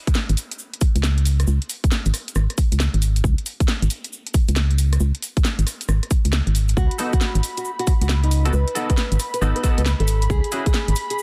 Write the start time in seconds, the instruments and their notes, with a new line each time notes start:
0.07 kick, closed hi-hat, cabasa
0.14 snare, cabasa
0.29 fm bass G#1, closed hi-hat, cabasa
0.37 open hi-hat, cabasa
0.51 closed hi-hat, cabasa
0.59 cabasa
0.74 closed hi-hat
0.81 kick, open hi-hat, cabasa
0.96 fm bass C#2, closed hi-hat, cabasa
1.03 snare, cabasa
1.18 closed hi-hat
1.25 open hi-hat, cabasa
1.40 cross-stick, closed hi-hat, cabasa
1.47 fm bass C#2, cabasa
1.62 closed hi-hat
1.70 open hi-hat, cabasa
1.84 kick, closed hi-hat, cabasa
1.91 snare, cabasa
2.06 fm bass G#1, closed hi-hat, cabasa
2.14 cross-stick, open hi-hat, cabasa
2.28 closed hi-hat, cabasa
2.35 fm bass G#1, cross-stick, cabasa
2.50 cross-stick, closed hi-hat
2.58 kick, open hi-hat, cabasa
2.72 fm bass C#2, closed hi-hat, cabasa
2.80 snare, cabasa
2.94 fm bass G#1, closed hi-hat
3.02 open hi-hat, cabasa
3.16 closed hi-hat, cabasa
3.24 fm bass C#2, kick, cabasa
3.38 closed hi-hat
3.46 open hi-hat, cabasa
3.60 kick, closed hi-hat, cabasa
3.68 snare, cabasa
3.82 fm bass G#1, closed hi-hat, cabasa
3.90 open hi-hat, cabasa
4.04 closed hi-hat, cabasa
4.13 cabasa
4.27 closed hi-hat
4.34 kick, open hi-hat, cabasa
4.48 fm bass C#2, closed hi-hat, cabasa
4.56 snare, cabasa
4.71 closed hi-hat
4.78 open hi-hat, cabasa
4.93 cross-stick, closed hi-hat, cabasa
5.00 fm bass C#2, cabasa
5.15 closed hi-hat
5.22 open hi-hat, cabasa
5.37 kick, closed hi-hat, cabasa
5.45 snare, cabasa
5.59 fm bass G#1, closed hi-hat, cabasa
5.67 cross-stick, open hi-hat, cabasa
5.81 closed hi-hat, cabasa
5.88 fm bass G#1, cross-stick, cabasa
6.03 cross-stick, closed hi-hat
6.11 kick, open hi-hat, cabasa
6.25 fm bass C#2, closed hi-hat, cabasa
6.32 snare, cabasa
6.47 fm bass G#1, closed hi-hat
6.55 open hi-hat, cabasa
6.68 closed hi-hat, cabasa
6.77 fm bass C#2, nylon-string guitar F#4, analog synth pad B5, kick, cabasa
6.91 closed hi-hat
6.98 clean electric guitar B3 D#4 F#4 A4, open hi-hat, cabasa
7.13 nylon-string guitar F#4, kick, closed hi-hat, cabasa
7.21 snare, cabasa
7.35 fm bass G#1, closed hi-hat, cabasa
7.43 open hi-hat, cabasa
7.57 nylon-string guitar F#4, closed hi-hat, cabasa
7.65 cabasa
7.79 nylon-string guitar F#4, closed hi-hat
7.87 kick, open hi-hat, cabasa
8.01 fm bass C#2, nylon-string guitar F#4, closed hi-hat, cabasa
8.09 snare, cabasa
8.23 nylon-string guitar D#4, closed hi-hat
8.31 open hi-hat, cabasa
8.45 clean electric guitar B3 D#4 F#4 A4, cross-stick, closed hi-hat, cabasa
8.53 fm bass C#2, nylon-string guitar B4, cabasa
8.68 closed hi-hat
8.75 clean electric guitar B3 D#4 F#4 A4, open hi-hat, cabasa
8.90 nylon-string guitar B4, kick, closed hi-hat, cabasa
8.97 snare, cabasa
9.12 fm bass G#1, closed hi-hat, cabasa
9.20 cross-stick, open hi-hat, cabasa
9.34 nylon-string guitar B4, closed hi-hat, cabasa
9.41 fm bass G#1, clean electric guitar B3 D#4 F#4 A4, cross-stick, cabasa
9.56 nylon-string guitar B4, cross-stick, closed hi-hat
9.63 clean electric guitar B3 D#4 F#4 A4, kick, open hi-hat, cabasa
9.78 fm bass C#2, nylon-string guitar B4, closed hi-hat, cabasa
9.86 snare, cabasa
10.00 fm bass G#1, nylon-string guitar A4, closed hi-hat
10.08 open hi-hat, cabasa
10.22 closed hi-hat, cabasa
10.30 fm bass C#2, nylon-string guitar G#4, kick, cabasa
10.44 closed hi-hat
10.52 clean electric guitar C#4 E4 F#4 G#4, open hi-hat, cabasa
10.66 nylon-string guitar G#4, kick, closed hi-hat, cabasa
10.74 snare, cabasa
10.88 fm bass G#1, closed hi-hat, cabasa
10.96 open hi-hat, cabasa
11.10 nylon-string guitar G#4, closed hi-hat, cabasa
11.18 cabasa